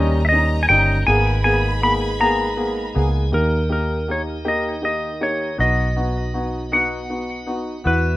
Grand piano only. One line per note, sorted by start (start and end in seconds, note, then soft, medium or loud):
0.00 0.20 G3 medium
0.00 0.21 C#4 medium
0.00 0.21 D#4 medium
0.32 0.58 G3 medium
0.32 0.58 C#4 medium
0.32 0.58 D#4 medium
0.70 0.96 G3 medium
0.70 0.96 C#4 medium
0.70 0.96 D#4 medium
1.07 1.33 A#3 medium
1.07 1.33 B3 medium
1.07 1.34 G#4 medium
1.44 1.71 A#3 medium
1.44 1.71 B3 medium
1.44 1.71 G#4 medium
1.82 2.08 A#3 medium
1.82 2.09 B3 medium
1.82 2.09 G#4 medium
2.20 2.46 A#3 medium
2.20 2.46 B3 medium
2.20 2.47 G#4 loud
2.57 2.84 A#3 medium
2.57 2.84 B3 medium
2.57 2.84 G#4 medium
2.95 3.21 A#3 medium
2.95 3.22 B3 medium
2.95 3.22 G#4 medium
3.32 3.59 A#3 medium
3.32 3.59 D#4 medium
3.32 3.59 G4 medium
3.69 3.96 A#3 medium
3.69 3.97 D#4 medium
3.69 3.97 G4 medium
4.08 4.35 A#3 medium
4.08 4.35 D#4 soft
4.08 4.35 G4 medium
4.45 4.72 A#3 medium
4.45 4.72 D#4 medium
4.45 4.72 G4 medium
4.82 5.09 A#3 medium
4.82 5.09 D#4 soft
4.82 5.10 G4 medium
5.21 5.48 A#3 medium
5.21 5.48 D#4 medium
5.21 5.48 G4 medium
5.58 5.85 B3 medium
5.58 5.85 D#4 medium
5.58 5.85 F#4 medium
5.96 6.23 B3 medium
5.96 6.23 D#4 medium
5.96 6.23 F#4 medium
6.34 6.61 B3 medium
6.34 6.61 D#4 soft
6.34 6.61 F#4 medium
6.72 6.98 B3 medium
6.72 6.99 D#4 medium
6.72 6.99 F#4 medium
7.09 7.36 B3 medium
7.09 7.37 D#4 medium
7.09 7.36 F#4 medium
7.46 7.73 B3 medium
7.46 7.74 D#4 medium
7.46 7.74 F#4 medium
7.84 8.11 B3 medium
7.84 8.12 E4 medium
7.84 8.12 F#4 medium